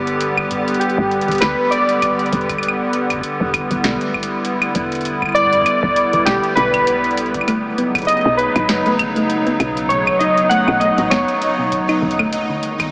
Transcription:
Already playing: fm bass G1, analog synth pad D3 G3 B3 G4 B4
0.07 closed hi-hat
0.21 closed hi-hat
0.37 kick, claves
0.51 closed hi-hat, mid tom
0.68 closed hi-hat
0.74 closed hi-hat
0.80 synth keys G4, closed hi-hat
0.90 closed hi-hat
0.98 fm bass G1, kick
1.11 closed hi-hat
1.21 closed hi-hat
1.28 fm bass D1, closed hi-hat
1.31 closed hi-hat
1.35 closed hi-hat
1.38 synth keys B4, snare, closed hi-hat
1.42 fm bass D2, kick, closed hi-hat, claves
1.71 synth keys D5, closed hi-hat
1.89 closed hi-hat
2.02 kick, closed hi-hat, claves
2.19 closed hi-hat
2.26 closed hi-hat
2.33 fm bass E1, closed hi-hat
2.41 closed hi-hat
2.49 kick, closed hi-hat, claves
2.58 claves
2.63 closed hi-hat
2.68 claves
2.93 closed hi-hat
3.10 kick, closed hi-hat, claves
3.12 kick
3.17 kick
3.19 kick
3.21 kick, closed hi-hat
3.27 analog synth pad E4
3.40 fm bass E1
3.54 kick, closed hi-hat, claves
3.71 fm bass D1, closed hi-hat
3.84 fm bass B1, snare, closed hi-hat
4.01 closed hi-hat
4.14 kick, claves
4.23 closed hi-hat
4.45 closed hi-hat
4.62 closed hi-hat, claves
4.75 fm bass E1, closed hi-hat
4.92 closed hi-hat
4.95 closed hi-hat
5.01 closed hi-hat
5.05 closed hi-hat
5.22 kick, claves
5.26 claves
5.29 claves
5.32 synth keys D5, closed hi-hat, mid tom, claves
5.41 mid tom
5.46 mid tom
5.53 closed hi-hat, mid tom
5.56 mid tom
5.62 mid tom
5.66 closed hi-hat, claves
5.83 fm bass E1, kick
5.96 closed hi-hat
6.13 fm bass D1, closed hi-hat
6.25 fm bass B1, synth keys G4, kick, snare, closed hi-hat, claves
6.44 closed hi-hat
6.55 fm bass B1, synth keys B4, closed hi-hat
6.74 kick, closed hi-hat, claves
6.87 closed hi-hat
7.04 closed hi-hat
7.11 closed hi-hat
7.17 closed hi-hat
7.26 closed hi-hat
7.34 kick, closed hi-hat
7.41 claves
7.48 analog synth pad C#3, synth arpeggio sound A3, synth texture D#4 D#5, kick, closed hi-hat, claves
7.56 analog synth pad F#3
7.78 synth arpeggio sound B3, analog synth pad D#4, closed hi-hat
7.95 kick, closed hi-hat, claves
7.98 closed hi-hat
8.02 closed hi-hat
8.05 synth keys D#5, closed hi-hat
8.08 closed hi-hat
8.17 closed hi-hat
8.21 closed hi-hat
8.25 fm bass B1, synth arpeggio sound B2
8.37 synth keys B4, closed hi-hat
8.56 fm bass A1, synth arpeggio sound D#4, kick, closed hi-hat, claves
8.69 fm bass F#1, snare, closed hi-hat
8.86 synth arpeggio sound A3, closed hi-hat
8.99 kick, closed hi-hat, claves
9.16 synth arpeggio sound A3, closed hi-hat
9.30 closed hi-hat
9.47 synth arpeggio sound B3, closed hi-hat
9.60 fm bass B1, kick, closed hi-hat, claves
9.77 closed hi-hat
9.89 synth arpeggio sound B2, synth keys C#5, closed hi-hat
10.07 kick, claves
10.19 synth arpeggio sound D#4, synth keys D#5, closed hi-hat
10.37 closed hi-hat
10.49 synth arpeggio sound A3, synth keys F#5, closed hi-hat
10.68 fm bass B1, kick, claves
10.80 synth arpeggio sound A3, synth keys D#5, closed hi-hat
10.98 fm bass A1, closed hi-hat
11.10 fm bass F#1, synth arpeggio sound B3, synth keys C#5, kick, snare, closed hi-hat, claves
11.28 closed hi-hat
11.42 closed hi-hat
11.59 synth arpeggio sound B2
11.72 kick, closed hi-hat
11.89 synth arpeggio sound D#4, closed hi-hat, claves
12.02 fm bass D#1
12.11 closed hi-hat
12.19 synth arpeggio sound A3, kick, claves
12.33 analog synth pad D#3, closed hi-hat
12.49 synth arpeggio sound D3, analog synth pad G3
12.63 analog synth pad A#3, closed hi-hat
12.80 synth arpeggio sound D#3, kick, closed hi-hat, claves

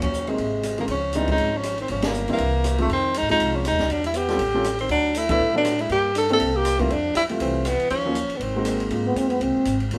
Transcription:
Already playing: upright bass D#2
0.01 trombone F#3, tenor saxophone C#4, kick, ride
0.13 hi-hat pedal
0.27 trombone C3, upright piano F#3 A#3 C4 D#4, tenor saxophone G#3, ride
0.38 upright bass G#1, ride
0.63 cross-stick, hi-hat pedal, ride
0.78 upright piano C#2 F3 G#3 C4 D#4, trombone C#3, tenor saxophone A#3, ride
0.88 upright bass C#2, trombone F3, tenor saxophone C#4, ride
1.13 upright piano E3 G3 B3 C4 D4, trombone G#3, tenor saxophone D#4, hi-hat pedal, ride
1.28 upright piano F3 G#3 C4 C#4 D#4, trombone G#3, tenor saxophone D#4, kick, ride
1.38 upright bass G#1, ride
1.54 trombone F3, tenor saxophone C#4
1.63 cross-stick, hi-hat pedal, ride
1.78 trombone D#3, tenor saxophone C4, ride
1.88 upright bass G1, trombone F3, tenor saxophone C#4, ride
2.02 trombone C#3, snare, ride
2.06 tenor saxophone A#3
2.13 hi-hat pedal
2.28 upright bass A#1, trombone E3, upright piano G3 A#3 C4 D4 E4, ride
2.33 tenor saxophone A#3
2.38 upright bass C2, ride
2.64 cross-stick, hi-hat pedal, ride
2.78 trombone C3, upright piano F3 G#3 C4 D#4 F4, tenor saxophone A3, ride
2.89 upright bass F2, trombone D#3, tenor saxophone C4, ride
3.14 trombone G#3, tenor saxophone D#4, hi-hat pedal, ride
3.22 upright bass G#2
3.29 upright bass D#2, upright piano F3 G#3 C4 D#4 F4, trombone G#3, tenor saxophone D#4, ride
3.39 upright bass C2, ride
3.54 trombone F3, tenor saxophone C#4
3.64 trombone G#3, tenor saxophone D#4, cross-stick, hi-hat pedal, ride
3.72 upright bass D#2
3.79 upright bass C#2, snare, ride
3.88 upright bass E2, trombone F#3, tenor saxophone D4, ride
4.04 trombone G3, tenor saxophone E4, ride
4.14 trombone B3, tenor saxophone G4, hi-hat pedal, ride
4.28 upright piano G3 C4 C#4 F4 A4, snare, ride
4.38 upright bass A1, ride
4.54 upright piano G3 C4 C#4 F4 A4
4.64 cross-stick, hi-hat pedal, ride
4.79 trombone D#3, tenor saxophone C4, ride
4.89 upright bass D2, trombone F#3, tenor saxophone D4, ride
5.15 trombone A3, tenor saxophone E4, hi-hat pedal, ride
5.29 upright piano F#3 B3 D4 E4 A4, trombone A3, tenor saxophone E4, kick, ride
5.39 upright bass A2
5.54 trombone F#3, upright piano F#3 B3 D4 E4 A4, tenor saxophone D4
5.65 cross-stick, hi-hat pedal, ride
5.78 trombone G#3, tenor saxophone E4, ride
5.89 upright bass G2, trombone A#3, tenor saxophone G4, ride
6.15 trombone D4, tenor saxophone A4, hi-hat pedal, ride
6.29 upright piano G3 A#3 D4 E4 A4, trombone C4, tenor saxophone A4, ride
6.40 upright bass C2, ride
6.54 trombone A#3, tenor saxophone G4
6.65 cross-stick, hi-hat pedal, ride
6.79 trombone D3, upright piano G3 A3 C4 E4 F4, tenor saxophone A#3, kick, ride
6.90 upright bass F2, trombone F3, tenor saxophone D4, ride
7.15 upright bass F#2, trombone G3, tenor saxophone E4, hi-hat pedal, ride
7.29 upright piano G3 A3 C4 E4 F4, ride
7.40 upright bass C2, trombone E3, tenor saxophone C4, ride
7.65 trombone E3, tenor saxophone B3, cross-stick, hi-hat pedal, ride
7.80 muted upright bass stroke, ride
7.90 upright bass D#2, trombone F3, tenor saxophone C#4, ride
8.05 upright piano F#3 A#3 C#4 D#4 F4
8.15 hi-hat pedal, ride
8.29 muted upright bass stroke, ride
8.35 trombone C#3, tenor saxophone B3
8.40 upright bass G#1, trombone D#3, tenor saxophone C4, ride
8.56 upright piano G#3 A#3 C4 D#4 F#4
8.65 cross-stick, hi-hat pedal, ride
8.80 ride
8.90 upright bass G#2, upright piano G#3 A#3 C4 D#4 F4, ride
9.06 trombone B3
9.15 upright bass F2, trombone C4, hi-hat pedal, ride
9.30 trombone B3, ride
9.40 upright bass C2, trombone C4, ride
9.56 muted upright bass stroke
9.65 upright bass G#1, hi-hat pedal, ride
9.80 ride
9.91 upright bass D#2, upright piano F#3 A#3 C#4 D#4 F4, ride

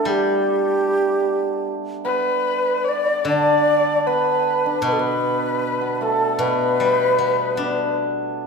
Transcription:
Already playing: hammered dulcimer A3 B3 D4 E4 G4, xiao A4
0.05 hammered dulcimer G3, guzheng G3
0.09 xiao G4
2.05 hammered dulcimer B3, erhu B4, xiao B4
2.84 erhu D5
2.88 xiao D5
3.25 guzheng D3, hammered dulcimer D4, erhu D5, xiao D5
4.07 hammered dulcimer B3, erhu B4, xiao B4
4.66 hammered dulcimer D4
4.82 guzheng B2, hammered dulcimer B3, erhu B4
4.87 xiao B4
4.93 xiao A4
4.99 hammered dulcimer B3, erhu B4, xiao B4
5.81 hammered dulcimer B3
5.95 xiao B4
6.01 hammered dulcimer A3, erhu A4, xiao A4
6.39 guzheng B2, hammered dulcimer B3, xiao B4, erhu B4
6.80 guzheng G3
7.19 guzheng B3
7.56 hammered dulcimer B3, guzheng D4

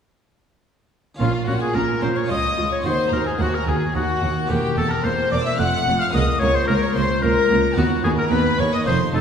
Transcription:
1.15 harpsichord C#4 F4
1.19 double bass section A#1, cello section A#2, harpsichord A#2, viola section C#4, violin section F4 F5, oboe F4
1.47 double bass section A#1, cello section A#2, harpsichord A#2, viola section C#4, violin section F#4 F#5, oboe F#4
1.61 violin section G#4 G#5, oboe G#4
1.74 double bass section A#1, cello section A#2, harpsichord A#2, viola section C#4, violin section A#4 A#5, oboe A#4
2.02 double bass section A#1, cello section A#2, harpsichord A#2, viola section C#4, violin section C5 C6, oboe C5
2.16 oboe C#5, violin section C#5 C#6
2.25 harpsichord C#4 F4
2.29 harpsichord C#2, cello section C#2, double bass section C#2, viola section F4, oboe D#5, violin section D#5 D#6
2.57 double bass section C#2, harpsichord C#2, cello section C#2, viola section F4
2.71 violin section C#5 C#6, oboe C#5
2.80 harpsichord C4 D#4 F#4, violin section C6
2.85 cello section D#2, harpsichord D#2, double bass section D#2, viola section F#4, violin section C5, oboe C5
3.10 cello section D#2, double bass section D#2, harpsichord D#2, viola section F#4, oboe A#4, violin section A#5
3.15 violin section A#4
3.25 violin section G#4 G#5, oboe G#4
3.39 cello section D#2, double bass section D#2, harpsichord D#2, viola section F#4, violin section F#4 F#5, oboe F#4
3.54 oboe A#4, violin section A#4 A#5
3.66 harpsichord D#2, cello section D#2, double bass section D#2, viola section F#4, oboe G#4, violin section G#4 G#5
3.94 double bass section D#2, cello section D#2, harpsichord D#2, viola section F#4, oboe F#4, violin section F#4 F#5
4.21 cello section D#2, double bass section D#2, harpsichord D#2, viola section F#4
4.46 double bass section E1, cello section E2, harpsichord E2 C4 G4 A#4, viola section A#3
4.50 oboe G4, violin section G4 G5
4.76 double bass section E1, cello section E2, harpsichord E2, viola section A#3, oboe A4, violin section A4 A5
4.91 oboe A#4, violin section A#4 A#5
5.03 double bass section E1, cello section E2, harpsichord E2, viola section A#3, oboe C5, violin section C5 C6
5.31 double bass section E1, harpsichord E2, cello section E2, viola section A#3, oboe D5, violin section D5 D6
5.43 oboe E5, violin section E5 E6
5.55 viola section A3, harpsichord C4 F4 A4, violin section F#6
5.59 double bass section F1, harpsichord F2, cello section F2, oboe F#5, violin section F#5
5.86 double bass section F1, cello section F2, harpsichord F2, viola section A3
5.99 oboe F5, violin section F5 F6
6.10 viola section A#3, harpsichord C#4 F4 A#4, violin section D#6
6.14 cello section C#2, harpsichord C#2, double bass section C#2, oboe D#5, violin section D#5
6.40 harpsichord C#2, cello section C#2, double bass section C#2, viola section A#3, oboe C#5, violin section C#5 C#6
6.55 oboe C5, violin section C5 C6
6.68 double bass section C#2, cello section C#2, harpsichord C#2, viola section A#3, oboe A#4, violin section A#4 A#5
6.81 oboe C#5, violin section C#5 C#6
6.94 double bass section C#2, cello section C#2, harpsichord C#2, viola section A#3, oboe C5, violin section C5 C6
7.22 cello section C#2, double bass section C#2, harpsichord C#2, viola section A#3, oboe A#4, violin section A#4 A#5
7.50 double bass section C#2, harpsichord C#2, cello section C#2, viola section A#3
7.73 cello section D#2, double bass section D#2, harpsichord B3 F#4 B4, viola section B3, violin section F#4
7.77 harpsichord D#2, oboe F#4, violin section F#5
8.04 cello section D#2, double bass section D#2, harpsichord D#2, viola section B3, oboe G#4, violin section G#4 G#5
8.18 violin section A#4 A#5, oboe A#4
8.31 cello section D#2, harpsichord D#2, double bass section D#2, viola section B3, violin section B4 B5, oboe B4
8.59 cello section D#2, double bass section D#2, harpsichord D#2, viola section B3, violin section C#5 C#6, oboe C#5
8.73 violin section D#5 D#6, oboe D#5
8.83 cello section F2, harpsichord D#4 F4 A4, viola section D#4
8.87 double bass section F1, harpsichord F2, oboe C5, violin section C5 C6
9.13 double bass section F1, cello section F2, harpsichord F2, viola section D#4, oboe A4, violin section A4 A5

